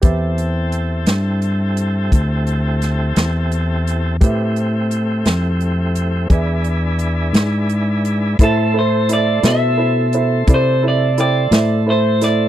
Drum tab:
HH |xxxxxxxxxxxx|xxxxxxxxxxxx|x-xx-xx-xx-x|
SD |---o----oo--|---o-----o--|---o-----o-o|
BD |o-----o-----|o-----o-----|o-----o-----|